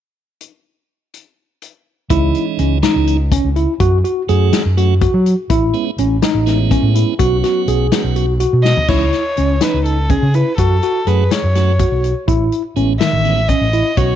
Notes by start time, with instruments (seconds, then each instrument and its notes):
0.41 closed hi-hat
1.14 closed hi-hat
1.62 closed hi-hat
2.10 fingered electric bass C#2, tonewheel organ E3 G#3 C#4 D#4, tine electric piano E4, kick, closed hi-hat
2.35 closed hi-hat
2.59 fingered electric bass C#2, tine electric piano C#4, closed hi-hat
2.83 tonewheel organ E3 G#3 C#4 D#4, tine electric piano D#4, snare, closed hi-hat
2.96 fingered electric bass C#2
3.07 closed hi-hat
3.32 tine electric piano C#4, kick, closed hi-hat
3.44 fingered electric bass C#2
3.56 tine electric piano E4, closed hi-hat
3.80 fingered electric bass F#2, tine electric piano F#4, kick, closed hi-hat
4.04 tine electric piano F#4, closed hi-hat
4.29 fingered electric bass F#2, tonewheel organ F#3 A3 C#4 F#4, tine electric piano G#4, closed hi-hat
4.53 snare, closed hi-hat
4.65 fingered electric bass F#2
4.77 tonewheel organ F#3 A3 C#4 F#4, tine electric piano F#4, closed hi-hat
5.01 tine electric piano F#4, kick, closed hi-hat
5.14 fingered electric bass F#3
5.26 closed hi-hat
5.50 fingered electric bass A1, tine electric piano E4, kick, closed hi-hat
5.74 tonewheel organ G#3 B3 C#4 E4, closed hi-hat
5.98 fingered electric bass A1, tine electric piano C#4, closed hi-hat
6.22 tine electric piano D#4, snare, closed hi-hat
6.35 fingered electric bass A1
6.46 tonewheel organ G#3 B3 C#4 E4, snare, closed hi-hat
6.71 tine electric piano C#4, kick, closed hi-hat
6.83 fingered electric bass A2
6.95 tine electric piano E4, closed hi-hat
7.19 fingered electric bass B1, tonewheel organ F#3 B3 C#4 F#4, tine electric piano F#4, kick, closed hi-hat
7.44 tine electric piano F#4, snare, closed hi-hat
7.68 fingered electric bass B1, tine electric piano G#4, closed hi-hat
7.92 tonewheel organ F#3 B3 C#4 F#4, snare, closed hi-hat
8.04 fingered electric bass B1
8.16 tine electric piano F#4, closed hi-hat
8.40 tine electric piano F#4, closed hi-hat
8.53 fingered electric bass B2
8.64 violin D#5, snare
8.77 floor tom
8.88 fingered electric bass C#2, tonewheel organ E3 G#3 C#4 D#4, tine electric piano E4, violin C#5, kick, crash
9.13 snare, closed hi-hat
9.37 fingered electric bass C#2, tine electric piano C#4, closed hi-hat
9.61 tonewheel organ E3 G#3 C#4 D#4, tine electric piano D#4, violin B4, snare, closed hi-hat
9.74 fingered electric bass C#2
9.85 violin A4, closed hi-hat
10.10 tine electric piano C#4, violin G#4, kick, closed hi-hat
10.22 fingered electric bass C#3
10.34 tine electric piano E4, violin B4, closed hi-hat
10.58 fingered electric bass F#2, tine electric piano F#4, violin A4, kick, closed hi-hat
10.83 tine electric piano F#4, closed hi-hat
11.07 fingered electric bass F#2, tonewheel organ F#3 A3 C#4 F#4, tine electric piano G#4, violin B4, closed hi-hat
11.31 violin C#5, snare, closed hi-hat
11.44 fingered electric bass F#2
11.55 tonewheel organ F#3 A3 C#4 F#4, tine electric piano F#4, snare, closed hi-hat
11.79 tine electric piano F#4, kick, closed hi-hat
11.92 fingered electric bass B1
12.04 closed hi-hat
12.28 fingered electric bass A1, tine electric piano E4, kick, closed hi-hat
12.52 closed hi-hat
12.76 fingered electric bass A1, tonewheel organ G#3 B3 C#4 E4, tine electric piano C#4, closed hi-hat
13.01 tine electric piano D#3, violin E5, snare, closed hi-hat
13.13 fingered electric bass A1
13.24 tonewheel organ G#3 B3 C#4 E4, closed hi-hat
13.48 tine electric piano C#4, violin D#5, kick, closed hi-hat
13.61 fingered electric bass A1
13.73 tine electric piano E4, closed hi-hat
13.97 fingered electric bass B1, tonewheel organ F#3 B3 C#4 F#4, tine electric piano F#4, violin C#5, kick, closed hi-hat